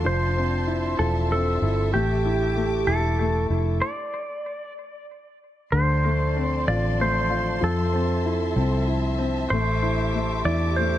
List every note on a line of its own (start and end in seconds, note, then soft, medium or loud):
0.00 1.89 D4 medium
0.00 3.78 A5 medium
0.00 1.89 C6 medium
0.04 0.95 F1 medium
0.04 0.98 F3 medium
0.04 1.02 C5 medium
0.04 3.78 E5 medium
0.37 1.31 C4 soft
0.67 1.61 E4 soft
0.99 1.58 E1 medium
0.99 1.90 F3 medium
0.99 1.31 A4 medium
1.32 1.92 C4 soft
1.32 1.93 A4 medium
1.62 1.91 G1 medium
1.62 1.92 E4 soft
1.92 2.83 A1 medium
1.92 2.54 A3 medium
1.92 3.79 G4 medium
1.92 2.90 G4 medium
1.92 3.79 D6 medium
2.25 2.86 E4 soft
2.56 3.19 A3 soft
2.87 3.46 E1 medium
2.87 3.48 E4 medium
2.87 3.46 A4 medium
3.20 3.80 A3 soft
3.50 3.79 F1 medium
3.50 3.80 E4 soft
3.81 4.73 D5 medium
5.72 6.64 D2 medium
5.72 7.59 D3 medium
5.72 9.48 F3 medium
5.72 6.68 C5 medium
5.72 7.61 D5 medium
5.72 10.98 A5 medium
5.72 9.48 C6 medium
6.04 6.98 A3 soft
6.36 7.59 C4 soft
6.68 7.59 A1 medium
6.68 7.28 F4 medium
6.68 7.01 D5 medium
6.99 7.61 A3 soft
6.99 7.65 C5 medium
7.30 7.61 F4 soft
7.61 8.53 F2 medium
7.61 9.46 F3 medium
7.61 8.85 A4 medium
7.61 10.98 E5 medium
7.93 8.55 C4 soft
8.25 8.86 E4 soft
8.56 9.47 C2 medium
8.56 9.17 C4 medium
8.87 9.49 E4 soft
9.19 9.50 C4 medium
9.50 10.41 A1 medium
9.50 10.12 A3 medium
9.50 10.98 G4 medium
9.50 10.45 C5 medium
9.50 10.98 D6 medium
9.82 10.44 E4 medium
10.14 10.77 A3 soft
10.45 10.98 E2 medium
10.45 10.98 E4 medium
10.45 10.78 D5 medium
10.76 10.98 A3 soft
10.76 10.98 C5 medium